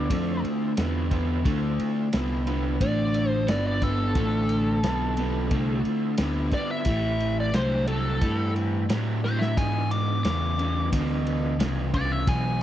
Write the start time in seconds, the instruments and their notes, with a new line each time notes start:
Already playing: lead electric guitar D5
0.10 picked electric bass F2, overdriven electric guitar D3 A3, tonewheel organ C4 E4 F4 A4, kick, ride
0.42 tonewheel organ C4 E4 F4 A4, muted picked electric bass stroke, ride
0.76 picked electric bass E2, overdriven electric guitar D3 B3, tonewheel organ C4 E4 F4 A4, snare, ride
1.10 overdriven electric guitar D3 B3, tonewheel organ C4 E4 F4 A4, kick, ride
1.45 picked electric bass D2, overdriven electric guitar D3 A3, tonewheel organ C4 E4 F4 A4, kick, ride
1.79 tonewheel organ C4 E4 F4 A4, muted picked electric bass stroke, ride
2.13 picked electric bass C2, overdriven electric guitar D3 B3, tonewheel organ C4 E4 F4 A4, snare, ride
2.46 overdriven electric guitar D3 B3, tonewheel organ C4 E4 F4 A4, ride
2.80 picked electric bass A1, overdriven electric guitar D3 A3, tonewheel organ C4 E4 F4 A4, lead electric guitar D5, kick, ride
3.14 tonewheel organ C4 E4 F4 A4, ride
3.29 lead electric guitar C5
3.47 picked electric bass G1, overdriven electric guitar D3 B3, tonewheel organ C4 E4 F4 A4, lead electric guitar D5, snare, ride
3.67 lead electric guitar D5
3.82 overdriven electric guitar D3 B3, tonewheel organ C4 E4 F4 A4, lead electric guitar A4, kick, ride
4.15 picked electric bass A1, overdriven electric guitar D3 A3, tonewheel organ C4 E4 F4 A4, kick, ride
4.49 tonewheel organ C4 E4 F4 A4, ride
4.83 picked electric bass B1, overdriven electric guitar D3 B3, tonewheel organ C4 E4 F4 A4, snare, ride
5.17 overdriven electric guitar D3 B3, tonewheel organ C4 E4 F4 G4, ride
5.51 picked electric bass C2, overdriven electric guitar D3 A3, tonewheel organ C4 E4 F4 A4, kick, ride
5.85 tonewheel organ C4 E4 F4 A4, muted picked electric bass stroke, ride
6.17 picked electric bass D2, overdriven electric guitar D3 B3, tonewheel organ C4 E4 F4, snare, ride
6.22 tonewheel organ A4
6.51 overdriven electric guitar D3 B3, tonewheel organ C4 E4 F4 A4, lead electric guitar D5, muted picked electric bass stroke, kick, ride
6.71 lead electric guitar E5
6.85 picked electric bass A1, overdriven electric guitar A2 E3, tonewheel organ C4 E4 G4, kick, ride
6.90 tonewheel organ B4
7.20 tonewheel organ C4 E4 G4 B4, ride
7.40 lead electric guitar D5
7.53 picked electric bass C2, overdriven electric guitar A2 F#3, tonewheel organ C4 E4, lead electric guitar C5, snare, ride
7.58 tonewheel organ G4 B4
7.87 overdriven electric guitar A2 F#3, tonewheel organ C4 E4 G4 A4, lead electric guitar A4, ride
8.21 picked electric bass G2, overdriven electric guitar A2 E3, tonewheel organ C4 E4 G4 B4, kick, ride
8.56 tonewheel organ C4 E4 G4 B4, ride
8.89 picked electric bass A2, overdriven electric guitar A2 F#3, tonewheel organ C4 E4 G4 B4, snare, ride
9.23 overdriven electric guitar A2 F#3, tonewheel organ C4 E4 G4 B4, lead electric guitar C5, snare
9.39 lead electric guitar E5, snare
9.56 overdriven electric guitar E2 B2, picked electric bass G#2, tonewheel organ D4 F4 G#4 B4, lead electric guitar G#5, kick, ride
9.91 tonewheel organ D4 F4 G#4 B4, lead electric guitar D6, ride
10.23 overdriven electric guitar E2 C#3, picked electric bass E2, tonewheel organ D4 F4 G#4 B4, lead electric guitar D6, snare, ride
10.58 overdriven electric guitar E2 C#3, tonewheel organ D4 F4 G#4 B4, ride
10.92 picked electric bass D2, overdriven electric guitar E2 B2, tonewheel organ D4 F4 G#4 B4, kick, ride
11.26 tonewheel organ D4 F4 G#4 B4, ride
11.59 picked electric bass C2, overdriven electric guitar E2 C#3, tonewheel organ D4 F4 G#4 B4, snare, ride
11.94 overdriven electric guitar E2 C#3, tonewheel organ D4 F4 G#4 B4, lead electric guitar D5, kick, ride
12.12 lead electric guitar E5
12.27 picked electric bass B1, overdriven electric guitar E2 B2, tonewheel organ D4 F4 G#4 B4, lead electric guitar G#5, kick, ride